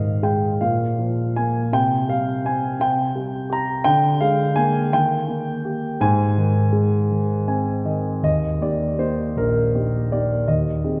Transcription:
grand piano
Already playing: G#2 D#3 D#5 F5
0.23 G#3 G5
0.61 A#2 F5
0.99 F3
1.36 A#3 G#5
1.73 C3 G5
2.09 G3 F5
2.45 C4 G#5
2.80 C3 G5
3.15 G3
3.50 G4 A#5
3.84 D3 G5
4.21 G#3 F5
4.56 A#3 G#5
4.93 D#3 G5
5.28 A#3
5.65 G4
6.01 G#2 G#5
6.38 D#3
6.73 G#3
7.11 D#3
7.48 C4 G#5
7.85 D#3 D#5
8.23 D#2 D#5
8.61 A#3 D#4 G4 D5
8.98 A#3 D#4 G4 C5
9.36 A#1 A#4
9.74 A#3 D#4 G4
10.12 A#3 D#4 G4 D5
10.48 D#2 D#5
10.84 C4 D#4 G#4

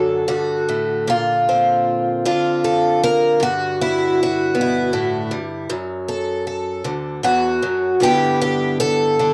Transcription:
twelve-string acoustic guitar
Already playing: F#2 D3 F#4 A4
0.28 G2 F#4
0.69 A2
1.07 A#2 F4
1.49 C4
2.26 D3 F4
2.64 A4
3.04 A#4
3.40 G2 F#4
3.81 E4
4.23 F#4
4.55 B2
4.61 E4
4.93 A2
5.31 G2
5.70 F#2
6.08 A4
6.47 A4
6.84 D2
7.23 E2 F#4
7.63 F#2
8.00 G2 D3 B3 E4 G4
8.41 G4
8.80 A4
9.19 D3

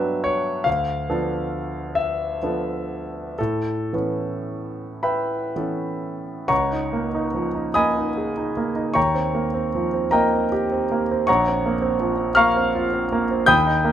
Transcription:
grand piano
Already playing: G2 F#3 B3 D4 B4 E5 G5
0.24 C#5
0.64 D2 F5
1.10 F3 B3 D4 A4
1.95 E5
2.42 F3 B3 D4 A4
3.38 A2 A4
3.93 E3 B3 C#4 A4
5.03 B4 E5 G5 B5
5.56 E3 B3 C#4 A4
6.48 C#2 C#5 F#5 A#5 C#6
6.72 D#4
6.93 A#3
7.15 D#4
7.34 F3
7.55 D#4
7.74 A#3 D#5 G#5 B5 D#6
7.98 D#4
8.18 G#4
8.37 D#4
8.57 A#3
8.76 D#4
8.94 D#2 C#5 G5 A#5 C#6
9.14 C4
9.34 A#3
9.54 C4
9.75 F3
9.93 C4
10.11 A#3 A#4 D#5 G5 A#5
10.32 C4
10.52 G4
10.72 C4
10.92 A#3
11.11 C4
11.27 A#1 C#5 F#5 A#5 C#6
11.47 C4
11.66 A#3
11.82 C4
12.00 F3
12.18 C4
12.35 A#3 F5 A#5 C#6 F6
12.56 C4
12.75 F4
12.94 C4
13.12 A#3
13.31 C4
13.46 D#2 G5 B5 D#6 G6
13.67 D#4
13.85 A#3

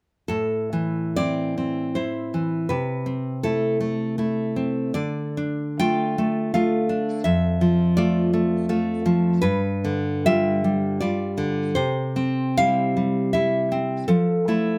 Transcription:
nylon-string guitar
0.28 A2 A4
0.73 E3
1.16 C4 E4 D5
1.58 C4
1.95 C4 E4 C5
2.34 E3
2.69 C3 B4
3.06 C4
3.43 A3 E4 A4
3.81 A3
4.18 A3 E4
4.56 C4
4.94 D3 D5
5.37 D4
5.80 A3 F4 G5
6.18 A3
6.54 A3 F4 F5
6.89 D4
7.24 F2 E5
7.61 F3
7.97 A3 F4 D5
8.33 A3
8.69 A3 F4
9.06 F3
9.42 G2 B4
9.85 D3
10.26 G3 F4 E5
10.64 G3
11.01 G3 F4 D5
11.38 D3
11.75 C3 C5
12.16 C4
12.57 G3 E4 F5
12.97 G3
13.33 G3 E4 E5
13.72 C4
14.08 F3 A4
14.48 A3 E4

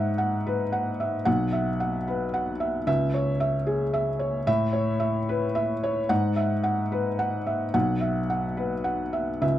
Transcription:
felt piano
Already playing: G#2 E5 F#5
0.18 F#5
0.47 B4
0.72 F#5
1.00 E5
1.25 B1 F#5
1.52 E5
1.80 F#5
2.08 B4
2.34 F#5
2.60 E5
2.87 C#2 E5
3.14 C#5
3.40 E5
3.67 G#4
3.94 E5
4.19 C#5
4.47 A2 E5
4.73 C#5
5.00 E5
5.29 B4
5.55 E5
5.84 C#5
6.09 G#2 F#5
6.36 E5
6.64 F#5
6.92 B4
7.19 F#5
7.46 E5
7.74 B1 F#5
8.01 E5
8.30 F#5
8.57 B4
8.84 F#5
9.13 E5
9.42 C#2 E5

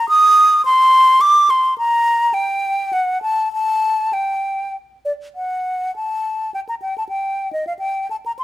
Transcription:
flute
0.09 D#6
0.65 C6
1.21 D6
1.50 C6
1.78 A#5
2.34 G5
2.93 F#5
3.22 A5
3.53 A5
4.13 G5
5.05 D5
5.35 F#5
5.96 A5
6.54 G5
6.69 A#5
6.82 G5
6.98 A5
7.09 G5
7.53 D#5
7.67 F5
7.79 G5
8.11 A5
8.26 A#5
8.39 C6

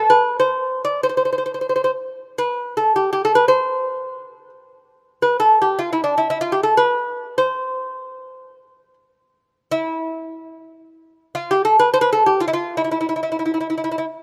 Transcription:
lute
Already playing: A4
0.10 B4
0.40 C5
0.85 D5
1.03 C5
1.09 C5
1.17 C5
1.25 C5
1.32 C5
1.38 C5
1.46 C5
1.54 C5
1.61 C5
1.69 C5
1.76 C5
1.84 C5
2.38 B4
2.77 A4
2.96 G4
3.13 G4
3.25 A4
3.35 B4
3.48 C5
5.22 B4
5.40 A4
5.62 G4
5.79 F4
5.93 E4
6.04 D4
6.18 E4
6.30 E4
6.41 F4
6.52 G4
6.63 A4
6.77 B4
7.38 C5
9.71 E4
11.35 F4
11.51 G4
11.65 A4
11.79 B4
11.94 C5
12.01 B4
12.13 A4
12.26 G4
12.40 F4
12.48 E4
12.53 F4
12.77 E4
12.84 E4
12.91 E4
13.01 E4
13.09 E4
13.16 E4
13.23 E4
13.32 E4
13.39 E4
13.46 E4
13.54 E4
13.61 E4
13.70 E4
13.78 E4
13.84 E4
13.92 E4
13.98 E4

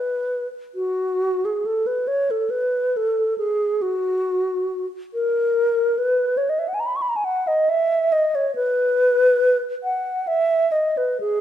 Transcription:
alto flute
Already playing: B4
0.75 F#4
1.45 G#4
1.66 A4
1.87 B4
2.08 C#5
2.31 A4
2.50 B4
2.97 A4
3.38 G#4
3.82 F#4
5.14 A#4
5.98 B4
6.37 C#5
6.49 D#5
6.59 E5
6.68 F#5
6.74 G#5
6.80 A#5
6.86 B5
6.96 C#6
7.02 B5
7.09 A#5
7.16 G#5
7.25 F#5
7.47 D#5
7.69 E5
8.12 D#5
8.35 C#5
8.55 B4
9.84 F#5
10.27 E5
10.72 D#5
10.97 B4
11.20 G#4

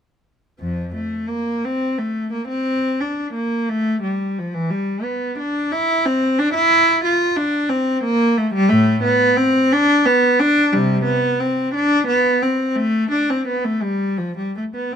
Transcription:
cello
0.60 F2 F3
0.95 A3
1.29 A#3
1.64 C4
1.98 A3
2.33 A#3
2.48 C4
3.00 D4
3.34 A#3
3.70 A3
4.03 G3
4.39 F3
4.54 E3
4.71 G3
5.04 B3
5.39 D4
5.72 E4
6.06 C4
6.39 D4
6.55 E4
7.05 F4
7.37 D4
7.70 C4
8.04 A#3
8.38 A3
8.54 G3
8.69 A2 A3
9.03 B3
9.37 C4
9.72 D4
10.06 B3
10.39 D4
10.73 C3 G3
11.05 B3
11.40 C4
11.75 D4
12.08 B3
12.43 C4
12.76 A3
13.11 D4
13.30 C4
13.48 B3
13.65 A3
13.83 G3
14.18 F3
14.38 G3
14.57 A3
14.75 B3
14.92 C3 C4

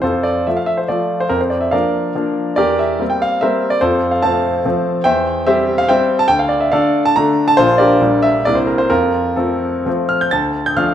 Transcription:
grand piano
0.02 F2 F4 A4 C5
0.23 D5
0.47 F3 A3 F4 E5
0.57 F5
0.66 E5
0.77 C5
0.88 F3 A3 F4 D5
1.20 C5
1.29 F2 A#4
1.41 C5
1.50 D5
1.61 E5
1.71 F3 A#3 D4 A#4 D5 F5
2.15 F3 A#3 D4
2.56 E2 G4 A#4 D5
2.79 E5
2.99 G3 A#3 C4
3.10 G5
3.22 F5
3.41 G3 A#3 C4 A#4 C5 E5
3.70 D5
3.81 F2 F4 A4 C5
4.11 F5
4.22 F3 A3 C4 C5 F5 A5
4.65 F3 A3 C4
5.04 E2 C5 E5 G5
5.47 G3 C4 G4 C5 E5
5.78 F5
5.88 G3 C4 C5 E5 G5
6.19 A5
6.28 D2 G5
6.39 F5
6.49 D5
6.60 E5
6.72 D3 A3 D4 A4 D5 F5
7.05 A5
7.16 D3 A3 D4 A#5
7.48 A5
7.57 A#1 F3 A#3 D4 F4 C5
7.78 G4 A#4 D5
8.01 A#1 G3 A#3 D4
8.22 E5
8.45 C2 G3 A#3 E4 D5
8.55 C5
8.67 A#4
8.78 C5
8.90 F2 F4 A#4
9.36 F3 A3 C4 F4 A4
9.86 F3 A3 C4
10.09 F6
10.21 G6
10.31 D2 A5 A6
10.66 G6
10.77 F3 A3 D4 F5 F6

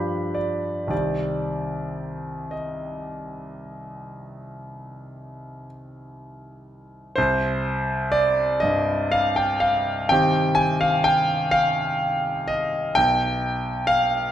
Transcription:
grand piano
Already playing: G2 F3 D4 G4 B5
0.34 D5
0.87 C2 D#3 C4 G4 D5
2.51 D#5
7.16 C2 C5
8.12 D5
8.60 G2 D#5
9.12 F5
9.36 G5
9.60 F5
10.09 D#3 C4 G4 G5
10.55 G#5
10.81 F5
11.04 G5
11.51 F5
12.48 D#5
12.95 B1 G5
13.87 F5

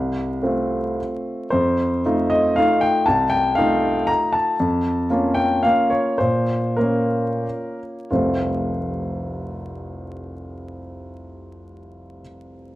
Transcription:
grand piano
Already playing: C2 F5
0.42 A3 C4 F4
1.50 F2 C5
2.05 A3 D#4 F4
2.30 D#5
2.56 A3 D#4 F4 F5
2.81 G5
3.06 C2 A5
3.30 G5
3.55 A3 D#4 F4 F5
4.07 A#5
4.32 A5
4.60 F2
5.10 A#3 C#4 F4
5.34 G5
5.63 A#3 C#4 F4 F5
5.90 C#5
6.18 A#2 C5
6.76 A#3 C#4 F4 A#4
8.11 F1 C2 F3 A3 C4 F4

